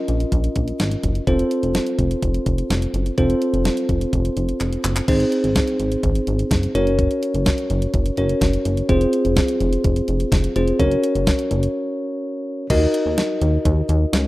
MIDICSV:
0, 0, Header, 1, 4, 480
1, 0, Start_track
1, 0, Tempo, 476190
1, 1283, Time_signature, 4, 2, 24, 8
1, 14388, End_track
2, 0, Start_track
2, 0, Title_t, "Tine electric piano"
2, 0, Program_c, 0, 4
2, 0, Note_on_c, 0, 61, 70
2, 0, Note_on_c, 0, 65, 64
2, 0, Note_on_c, 0, 70, 66
2, 0, Note_on_c, 0, 75, 78
2, 1244, Note_off_c, 0, 61, 0
2, 1244, Note_off_c, 0, 65, 0
2, 1244, Note_off_c, 0, 70, 0
2, 1244, Note_off_c, 0, 75, 0
2, 1283, Note_on_c, 0, 65, 65
2, 1283, Note_on_c, 0, 69, 68
2, 1283, Note_on_c, 0, 72, 80
2, 1284, Note_on_c, 0, 60, 73
2, 3165, Note_off_c, 0, 60, 0
2, 3165, Note_off_c, 0, 65, 0
2, 3165, Note_off_c, 0, 69, 0
2, 3165, Note_off_c, 0, 72, 0
2, 3204, Note_on_c, 0, 69, 67
2, 3204, Note_on_c, 0, 72, 84
2, 3205, Note_on_c, 0, 60, 74
2, 3205, Note_on_c, 0, 65, 68
2, 5085, Note_off_c, 0, 69, 0
2, 5085, Note_off_c, 0, 72, 0
2, 5086, Note_off_c, 0, 60, 0
2, 5086, Note_off_c, 0, 65, 0
2, 5124, Note_on_c, 0, 60, 73
2, 5124, Note_on_c, 0, 63, 67
2, 5124, Note_on_c, 0, 68, 68
2, 5124, Note_on_c, 0, 72, 80
2, 6770, Note_off_c, 0, 60, 0
2, 6770, Note_off_c, 0, 63, 0
2, 6770, Note_off_c, 0, 68, 0
2, 6770, Note_off_c, 0, 72, 0
2, 6804, Note_on_c, 0, 61, 74
2, 6804, Note_on_c, 0, 66, 67
2, 6804, Note_on_c, 0, 70, 69
2, 6804, Note_on_c, 0, 73, 80
2, 8215, Note_off_c, 0, 61, 0
2, 8215, Note_off_c, 0, 66, 0
2, 8215, Note_off_c, 0, 70, 0
2, 8215, Note_off_c, 0, 73, 0
2, 8244, Note_on_c, 0, 61, 57
2, 8244, Note_on_c, 0, 66, 51
2, 8244, Note_on_c, 0, 70, 51
2, 8244, Note_on_c, 0, 73, 62
2, 8963, Note_off_c, 0, 70, 0
2, 8963, Note_on_c, 0, 60, 78
2, 8963, Note_on_c, 0, 72, 84
2, 8964, Note_off_c, 0, 61, 0
2, 8964, Note_off_c, 0, 66, 0
2, 8964, Note_off_c, 0, 73, 0
2, 8964, Note_on_c, 0, 65, 67
2, 8965, Note_on_c, 0, 68, 68
2, 10610, Note_off_c, 0, 60, 0
2, 10610, Note_off_c, 0, 65, 0
2, 10610, Note_off_c, 0, 68, 0
2, 10610, Note_off_c, 0, 72, 0
2, 10643, Note_on_c, 0, 65, 52
2, 10643, Note_on_c, 0, 68, 53
2, 10643, Note_on_c, 0, 72, 64
2, 10644, Note_on_c, 0, 60, 56
2, 10881, Note_on_c, 0, 70, 69
2, 10882, Note_on_c, 0, 61, 75
2, 10882, Note_on_c, 0, 66, 67
2, 10882, Note_on_c, 0, 73, 82
2, 10883, Note_off_c, 0, 65, 0
2, 10883, Note_off_c, 0, 68, 0
2, 10883, Note_off_c, 0, 72, 0
2, 10884, Note_off_c, 0, 60, 0
2, 12764, Note_off_c, 0, 61, 0
2, 12764, Note_off_c, 0, 66, 0
2, 12764, Note_off_c, 0, 70, 0
2, 12764, Note_off_c, 0, 73, 0
2, 12803, Note_on_c, 0, 70, 71
2, 12804, Note_on_c, 0, 63, 77
2, 12804, Note_on_c, 0, 66, 67
2, 12804, Note_on_c, 0, 75, 85
2, 14388, Note_off_c, 0, 63, 0
2, 14388, Note_off_c, 0, 66, 0
2, 14388, Note_off_c, 0, 70, 0
2, 14388, Note_off_c, 0, 75, 0
2, 14388, End_track
3, 0, Start_track
3, 0, Title_t, "Analog synth bass"
3, 0, Program_c, 1, 38
3, 85, Note_on_c, 1, 34, 105
3, 252, Note_off_c, 1, 34, 0
3, 324, Note_on_c, 1, 34, 105
3, 491, Note_off_c, 1, 34, 0
3, 563, Note_on_c, 1, 34, 90
3, 731, Note_off_c, 1, 34, 0
3, 804, Note_on_c, 1, 32, 96
3, 972, Note_off_c, 1, 32, 0
3, 1043, Note_on_c, 1, 30, 88
3, 1211, Note_off_c, 1, 30, 0
3, 1282, Note_on_c, 1, 29, 113
3, 1450, Note_off_c, 1, 29, 0
3, 1644, Note_on_c, 1, 29, 96
3, 1812, Note_off_c, 1, 29, 0
3, 2002, Note_on_c, 1, 29, 94
3, 2170, Note_off_c, 1, 29, 0
3, 2243, Note_on_c, 1, 29, 104
3, 2411, Note_off_c, 1, 29, 0
3, 2484, Note_on_c, 1, 29, 95
3, 2652, Note_off_c, 1, 29, 0
3, 2722, Note_on_c, 1, 29, 100
3, 2891, Note_off_c, 1, 29, 0
3, 2962, Note_on_c, 1, 30, 93
3, 3130, Note_off_c, 1, 30, 0
3, 3202, Note_on_c, 1, 29, 101
3, 3371, Note_off_c, 1, 29, 0
3, 3563, Note_on_c, 1, 29, 94
3, 3731, Note_off_c, 1, 29, 0
3, 3922, Note_on_c, 1, 29, 103
3, 4091, Note_off_c, 1, 29, 0
3, 4163, Note_on_c, 1, 29, 110
3, 4331, Note_off_c, 1, 29, 0
3, 4401, Note_on_c, 1, 29, 90
3, 4570, Note_off_c, 1, 29, 0
3, 4643, Note_on_c, 1, 29, 92
3, 4811, Note_off_c, 1, 29, 0
3, 4883, Note_on_c, 1, 30, 91
3, 5051, Note_off_c, 1, 30, 0
3, 5122, Note_on_c, 1, 32, 105
3, 5290, Note_off_c, 1, 32, 0
3, 5482, Note_on_c, 1, 32, 89
3, 5650, Note_off_c, 1, 32, 0
3, 5843, Note_on_c, 1, 32, 100
3, 6011, Note_off_c, 1, 32, 0
3, 6083, Note_on_c, 1, 32, 110
3, 6251, Note_off_c, 1, 32, 0
3, 6322, Note_on_c, 1, 32, 102
3, 6491, Note_off_c, 1, 32, 0
3, 6561, Note_on_c, 1, 30, 91
3, 6730, Note_off_c, 1, 30, 0
3, 6803, Note_on_c, 1, 30, 97
3, 7139, Note_off_c, 1, 30, 0
3, 7402, Note_on_c, 1, 30, 92
3, 7571, Note_off_c, 1, 30, 0
3, 7763, Note_on_c, 1, 30, 101
3, 7931, Note_off_c, 1, 30, 0
3, 8003, Note_on_c, 1, 30, 104
3, 8171, Note_off_c, 1, 30, 0
3, 8242, Note_on_c, 1, 30, 104
3, 8410, Note_off_c, 1, 30, 0
3, 8481, Note_on_c, 1, 30, 91
3, 8649, Note_off_c, 1, 30, 0
3, 8724, Note_on_c, 1, 30, 96
3, 8892, Note_off_c, 1, 30, 0
3, 8963, Note_on_c, 1, 29, 104
3, 9131, Note_off_c, 1, 29, 0
3, 9323, Note_on_c, 1, 29, 96
3, 9491, Note_off_c, 1, 29, 0
3, 9682, Note_on_c, 1, 29, 100
3, 9851, Note_off_c, 1, 29, 0
3, 9923, Note_on_c, 1, 29, 104
3, 10091, Note_off_c, 1, 29, 0
3, 10162, Note_on_c, 1, 29, 97
3, 10330, Note_off_c, 1, 29, 0
3, 10401, Note_on_c, 1, 29, 93
3, 10570, Note_off_c, 1, 29, 0
3, 10644, Note_on_c, 1, 29, 95
3, 10812, Note_off_c, 1, 29, 0
3, 10882, Note_on_c, 1, 30, 109
3, 11050, Note_off_c, 1, 30, 0
3, 11243, Note_on_c, 1, 30, 93
3, 11411, Note_off_c, 1, 30, 0
3, 11602, Note_on_c, 1, 30, 103
3, 11771, Note_off_c, 1, 30, 0
3, 12803, Note_on_c, 1, 39, 102
3, 12971, Note_off_c, 1, 39, 0
3, 13162, Note_on_c, 1, 39, 90
3, 13330, Note_off_c, 1, 39, 0
3, 13522, Note_on_c, 1, 39, 93
3, 13691, Note_off_c, 1, 39, 0
3, 13763, Note_on_c, 1, 39, 107
3, 13931, Note_off_c, 1, 39, 0
3, 14001, Note_on_c, 1, 39, 108
3, 14170, Note_off_c, 1, 39, 0
3, 14242, Note_on_c, 1, 37, 100
3, 14388, Note_off_c, 1, 37, 0
3, 14388, End_track
4, 0, Start_track
4, 0, Title_t, "Drums"
4, 83, Note_on_c, 9, 42, 62
4, 184, Note_off_c, 9, 42, 0
4, 205, Note_on_c, 9, 42, 56
4, 306, Note_off_c, 9, 42, 0
4, 323, Note_on_c, 9, 36, 86
4, 323, Note_on_c, 9, 42, 76
4, 424, Note_off_c, 9, 36, 0
4, 424, Note_off_c, 9, 42, 0
4, 442, Note_on_c, 9, 42, 52
4, 543, Note_off_c, 9, 42, 0
4, 560, Note_on_c, 9, 42, 65
4, 563, Note_on_c, 9, 36, 91
4, 661, Note_off_c, 9, 42, 0
4, 664, Note_off_c, 9, 36, 0
4, 682, Note_on_c, 9, 42, 50
4, 783, Note_off_c, 9, 42, 0
4, 804, Note_on_c, 9, 42, 78
4, 805, Note_on_c, 9, 38, 106
4, 905, Note_off_c, 9, 42, 0
4, 906, Note_off_c, 9, 38, 0
4, 922, Note_on_c, 9, 42, 58
4, 1023, Note_off_c, 9, 42, 0
4, 1043, Note_on_c, 9, 36, 84
4, 1043, Note_on_c, 9, 42, 78
4, 1144, Note_off_c, 9, 36, 0
4, 1144, Note_off_c, 9, 42, 0
4, 1162, Note_on_c, 9, 42, 47
4, 1263, Note_off_c, 9, 42, 0
4, 1282, Note_on_c, 9, 36, 106
4, 1282, Note_on_c, 9, 42, 60
4, 1383, Note_off_c, 9, 36, 0
4, 1383, Note_off_c, 9, 42, 0
4, 1404, Note_on_c, 9, 42, 49
4, 1504, Note_off_c, 9, 42, 0
4, 1523, Note_on_c, 9, 42, 73
4, 1624, Note_off_c, 9, 42, 0
4, 1644, Note_on_c, 9, 42, 51
4, 1745, Note_off_c, 9, 42, 0
4, 1763, Note_on_c, 9, 38, 109
4, 1763, Note_on_c, 9, 42, 59
4, 1863, Note_off_c, 9, 38, 0
4, 1864, Note_off_c, 9, 42, 0
4, 1881, Note_on_c, 9, 42, 58
4, 1981, Note_off_c, 9, 42, 0
4, 2002, Note_on_c, 9, 36, 84
4, 2002, Note_on_c, 9, 42, 64
4, 2103, Note_off_c, 9, 36, 0
4, 2103, Note_off_c, 9, 42, 0
4, 2126, Note_on_c, 9, 42, 55
4, 2227, Note_off_c, 9, 42, 0
4, 2243, Note_on_c, 9, 36, 83
4, 2243, Note_on_c, 9, 42, 74
4, 2344, Note_off_c, 9, 36, 0
4, 2344, Note_off_c, 9, 42, 0
4, 2363, Note_on_c, 9, 42, 53
4, 2464, Note_off_c, 9, 42, 0
4, 2482, Note_on_c, 9, 42, 68
4, 2484, Note_on_c, 9, 36, 86
4, 2583, Note_off_c, 9, 42, 0
4, 2585, Note_off_c, 9, 36, 0
4, 2603, Note_on_c, 9, 42, 53
4, 2704, Note_off_c, 9, 42, 0
4, 2726, Note_on_c, 9, 42, 78
4, 2727, Note_on_c, 9, 38, 105
4, 2827, Note_off_c, 9, 42, 0
4, 2828, Note_off_c, 9, 38, 0
4, 2844, Note_on_c, 9, 42, 59
4, 2945, Note_off_c, 9, 42, 0
4, 2965, Note_on_c, 9, 42, 78
4, 3065, Note_off_c, 9, 42, 0
4, 3084, Note_on_c, 9, 42, 48
4, 3185, Note_off_c, 9, 42, 0
4, 3203, Note_on_c, 9, 36, 108
4, 3204, Note_on_c, 9, 42, 61
4, 3304, Note_off_c, 9, 36, 0
4, 3304, Note_off_c, 9, 42, 0
4, 3324, Note_on_c, 9, 42, 47
4, 3425, Note_off_c, 9, 42, 0
4, 3444, Note_on_c, 9, 42, 73
4, 3545, Note_off_c, 9, 42, 0
4, 3566, Note_on_c, 9, 42, 51
4, 3666, Note_off_c, 9, 42, 0
4, 3683, Note_on_c, 9, 38, 111
4, 3683, Note_on_c, 9, 42, 61
4, 3784, Note_off_c, 9, 38, 0
4, 3784, Note_off_c, 9, 42, 0
4, 3801, Note_on_c, 9, 42, 57
4, 3902, Note_off_c, 9, 42, 0
4, 3922, Note_on_c, 9, 36, 82
4, 3922, Note_on_c, 9, 42, 60
4, 4023, Note_off_c, 9, 36, 0
4, 4023, Note_off_c, 9, 42, 0
4, 4045, Note_on_c, 9, 42, 55
4, 4146, Note_off_c, 9, 42, 0
4, 4163, Note_on_c, 9, 36, 85
4, 4163, Note_on_c, 9, 42, 74
4, 4264, Note_off_c, 9, 36, 0
4, 4264, Note_off_c, 9, 42, 0
4, 4284, Note_on_c, 9, 42, 53
4, 4385, Note_off_c, 9, 42, 0
4, 4402, Note_on_c, 9, 42, 65
4, 4503, Note_off_c, 9, 42, 0
4, 4522, Note_on_c, 9, 42, 51
4, 4623, Note_off_c, 9, 42, 0
4, 4643, Note_on_c, 9, 39, 52
4, 4645, Note_on_c, 9, 42, 75
4, 4743, Note_off_c, 9, 39, 0
4, 4745, Note_off_c, 9, 42, 0
4, 4764, Note_on_c, 9, 42, 58
4, 4864, Note_off_c, 9, 42, 0
4, 4884, Note_on_c, 9, 39, 83
4, 4885, Note_on_c, 9, 42, 81
4, 4985, Note_off_c, 9, 39, 0
4, 4985, Note_off_c, 9, 42, 0
4, 5003, Note_on_c, 9, 39, 82
4, 5003, Note_on_c, 9, 42, 48
4, 5104, Note_off_c, 9, 39, 0
4, 5104, Note_off_c, 9, 42, 0
4, 5122, Note_on_c, 9, 36, 113
4, 5122, Note_on_c, 9, 42, 61
4, 5122, Note_on_c, 9, 49, 91
4, 5223, Note_off_c, 9, 36, 0
4, 5223, Note_off_c, 9, 42, 0
4, 5223, Note_off_c, 9, 49, 0
4, 5243, Note_on_c, 9, 42, 49
4, 5344, Note_off_c, 9, 42, 0
4, 5364, Note_on_c, 9, 42, 76
4, 5465, Note_off_c, 9, 42, 0
4, 5484, Note_on_c, 9, 42, 52
4, 5585, Note_off_c, 9, 42, 0
4, 5601, Note_on_c, 9, 36, 102
4, 5602, Note_on_c, 9, 38, 109
4, 5602, Note_on_c, 9, 42, 60
4, 5702, Note_off_c, 9, 36, 0
4, 5703, Note_off_c, 9, 38, 0
4, 5703, Note_off_c, 9, 42, 0
4, 5721, Note_on_c, 9, 42, 58
4, 5822, Note_off_c, 9, 42, 0
4, 5842, Note_on_c, 9, 42, 62
4, 5943, Note_off_c, 9, 42, 0
4, 5964, Note_on_c, 9, 42, 56
4, 6065, Note_off_c, 9, 42, 0
4, 6082, Note_on_c, 9, 36, 106
4, 6082, Note_on_c, 9, 42, 77
4, 6183, Note_off_c, 9, 36, 0
4, 6183, Note_off_c, 9, 42, 0
4, 6203, Note_on_c, 9, 42, 52
4, 6304, Note_off_c, 9, 42, 0
4, 6322, Note_on_c, 9, 42, 68
4, 6423, Note_off_c, 9, 42, 0
4, 6443, Note_on_c, 9, 42, 53
4, 6544, Note_off_c, 9, 42, 0
4, 6561, Note_on_c, 9, 36, 105
4, 6564, Note_on_c, 9, 42, 75
4, 6566, Note_on_c, 9, 38, 110
4, 6662, Note_off_c, 9, 36, 0
4, 6665, Note_off_c, 9, 42, 0
4, 6666, Note_off_c, 9, 38, 0
4, 6685, Note_on_c, 9, 42, 60
4, 6786, Note_off_c, 9, 42, 0
4, 6804, Note_on_c, 9, 42, 78
4, 6905, Note_off_c, 9, 42, 0
4, 6925, Note_on_c, 9, 42, 49
4, 7026, Note_off_c, 9, 42, 0
4, 7043, Note_on_c, 9, 36, 108
4, 7043, Note_on_c, 9, 42, 59
4, 7143, Note_off_c, 9, 36, 0
4, 7144, Note_off_c, 9, 42, 0
4, 7164, Note_on_c, 9, 42, 47
4, 7265, Note_off_c, 9, 42, 0
4, 7285, Note_on_c, 9, 42, 76
4, 7385, Note_off_c, 9, 42, 0
4, 7404, Note_on_c, 9, 42, 53
4, 7505, Note_off_c, 9, 42, 0
4, 7521, Note_on_c, 9, 36, 102
4, 7522, Note_on_c, 9, 38, 111
4, 7522, Note_on_c, 9, 42, 61
4, 7622, Note_off_c, 9, 36, 0
4, 7623, Note_off_c, 9, 38, 0
4, 7623, Note_off_c, 9, 42, 0
4, 7640, Note_on_c, 9, 42, 57
4, 7741, Note_off_c, 9, 42, 0
4, 7762, Note_on_c, 9, 42, 62
4, 7862, Note_off_c, 9, 42, 0
4, 7883, Note_on_c, 9, 42, 57
4, 7983, Note_off_c, 9, 42, 0
4, 8000, Note_on_c, 9, 42, 76
4, 8002, Note_on_c, 9, 36, 108
4, 8101, Note_off_c, 9, 42, 0
4, 8103, Note_off_c, 9, 36, 0
4, 8121, Note_on_c, 9, 42, 53
4, 8222, Note_off_c, 9, 42, 0
4, 8239, Note_on_c, 9, 42, 70
4, 8340, Note_off_c, 9, 42, 0
4, 8361, Note_on_c, 9, 42, 54
4, 8461, Note_off_c, 9, 42, 0
4, 8481, Note_on_c, 9, 36, 103
4, 8484, Note_on_c, 9, 42, 77
4, 8485, Note_on_c, 9, 38, 105
4, 8582, Note_off_c, 9, 36, 0
4, 8585, Note_off_c, 9, 42, 0
4, 8586, Note_off_c, 9, 38, 0
4, 8603, Note_on_c, 9, 42, 58
4, 8704, Note_off_c, 9, 42, 0
4, 8723, Note_on_c, 9, 42, 82
4, 8823, Note_off_c, 9, 42, 0
4, 8843, Note_on_c, 9, 42, 48
4, 8944, Note_off_c, 9, 42, 0
4, 8962, Note_on_c, 9, 36, 109
4, 8962, Note_on_c, 9, 42, 62
4, 9063, Note_off_c, 9, 36, 0
4, 9063, Note_off_c, 9, 42, 0
4, 9082, Note_on_c, 9, 42, 49
4, 9183, Note_off_c, 9, 42, 0
4, 9203, Note_on_c, 9, 42, 76
4, 9304, Note_off_c, 9, 42, 0
4, 9324, Note_on_c, 9, 42, 50
4, 9424, Note_off_c, 9, 42, 0
4, 9441, Note_on_c, 9, 36, 104
4, 9441, Note_on_c, 9, 38, 113
4, 9441, Note_on_c, 9, 42, 59
4, 9542, Note_off_c, 9, 36, 0
4, 9542, Note_off_c, 9, 38, 0
4, 9542, Note_off_c, 9, 42, 0
4, 9560, Note_on_c, 9, 42, 57
4, 9661, Note_off_c, 9, 42, 0
4, 9682, Note_on_c, 9, 42, 62
4, 9782, Note_off_c, 9, 42, 0
4, 9804, Note_on_c, 9, 42, 56
4, 9905, Note_off_c, 9, 42, 0
4, 9922, Note_on_c, 9, 42, 77
4, 9923, Note_on_c, 9, 36, 106
4, 10023, Note_off_c, 9, 42, 0
4, 10024, Note_off_c, 9, 36, 0
4, 10042, Note_on_c, 9, 42, 52
4, 10143, Note_off_c, 9, 42, 0
4, 10160, Note_on_c, 9, 42, 68
4, 10261, Note_off_c, 9, 42, 0
4, 10281, Note_on_c, 9, 42, 52
4, 10382, Note_off_c, 9, 42, 0
4, 10401, Note_on_c, 9, 36, 106
4, 10405, Note_on_c, 9, 42, 78
4, 10406, Note_on_c, 9, 38, 109
4, 10502, Note_off_c, 9, 36, 0
4, 10505, Note_off_c, 9, 42, 0
4, 10506, Note_off_c, 9, 38, 0
4, 10523, Note_on_c, 9, 42, 61
4, 10624, Note_off_c, 9, 42, 0
4, 10643, Note_on_c, 9, 42, 82
4, 10744, Note_off_c, 9, 42, 0
4, 10761, Note_on_c, 9, 42, 50
4, 10862, Note_off_c, 9, 42, 0
4, 10882, Note_on_c, 9, 36, 112
4, 10883, Note_on_c, 9, 42, 63
4, 10983, Note_off_c, 9, 36, 0
4, 10984, Note_off_c, 9, 42, 0
4, 11003, Note_on_c, 9, 42, 49
4, 11103, Note_off_c, 9, 42, 0
4, 11123, Note_on_c, 9, 42, 76
4, 11224, Note_off_c, 9, 42, 0
4, 11244, Note_on_c, 9, 42, 53
4, 11345, Note_off_c, 9, 42, 0
4, 11361, Note_on_c, 9, 36, 104
4, 11362, Note_on_c, 9, 38, 113
4, 11362, Note_on_c, 9, 42, 61
4, 11461, Note_off_c, 9, 36, 0
4, 11463, Note_off_c, 9, 38, 0
4, 11463, Note_off_c, 9, 42, 0
4, 11479, Note_on_c, 9, 42, 58
4, 11580, Note_off_c, 9, 42, 0
4, 11601, Note_on_c, 9, 42, 63
4, 11702, Note_off_c, 9, 42, 0
4, 11722, Note_on_c, 9, 42, 59
4, 11823, Note_off_c, 9, 42, 0
4, 12802, Note_on_c, 9, 36, 113
4, 12803, Note_on_c, 9, 42, 62
4, 12803, Note_on_c, 9, 49, 96
4, 12903, Note_off_c, 9, 36, 0
4, 12904, Note_off_c, 9, 42, 0
4, 12904, Note_off_c, 9, 49, 0
4, 13044, Note_on_c, 9, 42, 79
4, 13145, Note_off_c, 9, 42, 0
4, 13284, Note_on_c, 9, 38, 115
4, 13284, Note_on_c, 9, 42, 62
4, 13385, Note_off_c, 9, 38, 0
4, 13385, Note_off_c, 9, 42, 0
4, 13523, Note_on_c, 9, 42, 61
4, 13623, Note_off_c, 9, 42, 0
4, 13763, Note_on_c, 9, 36, 87
4, 13763, Note_on_c, 9, 42, 79
4, 13864, Note_off_c, 9, 36, 0
4, 13864, Note_off_c, 9, 42, 0
4, 14002, Note_on_c, 9, 42, 71
4, 14103, Note_off_c, 9, 42, 0
4, 14246, Note_on_c, 9, 42, 79
4, 14247, Note_on_c, 9, 38, 111
4, 14346, Note_off_c, 9, 42, 0
4, 14347, Note_off_c, 9, 38, 0
4, 14388, End_track
0, 0, End_of_file